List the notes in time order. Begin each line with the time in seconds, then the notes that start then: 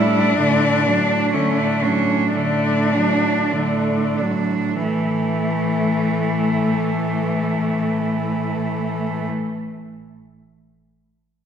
Already playing: A2 G3 D4 E4
0.39 A2 D3 A3
0.86 F#3 D4
1.33 A2 D3 A3 C#4
1.58 D4
1.83 F#3 C#4 D4
2.35 A2 D3 A3 D4
2.91 F#3 D4
3.52 A2 D3 A3
4.18 F#3 D4
4.83 A2 E3 A3